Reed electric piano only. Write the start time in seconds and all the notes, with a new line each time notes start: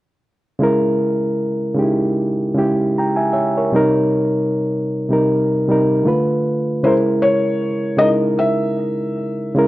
0.59 C#3 G#3 E4
0.63 A#4
1.75 C#3 G#3 D#4
1.79 G4
1.84 E4
2.54 C#3 G#3 E4
2.58 G4
2.98 G5 A#5
3.16 E5 G#5
3.33 C#5 E5
3.57 A#4 C#5
3.72 C3 G3 D#4
3.76 A#4
5.09 C3 G3 D#4 A#4
5.68 C3 G3 D#4 A#4
6.03 D3 A3 F4
6.08 B4
6.83 C#3 G#3 E4 A#4
7.97 C#3 G#3 D#4
8.01 A#4
8.06 E4
9.55 C#3 G#3 E4 A#4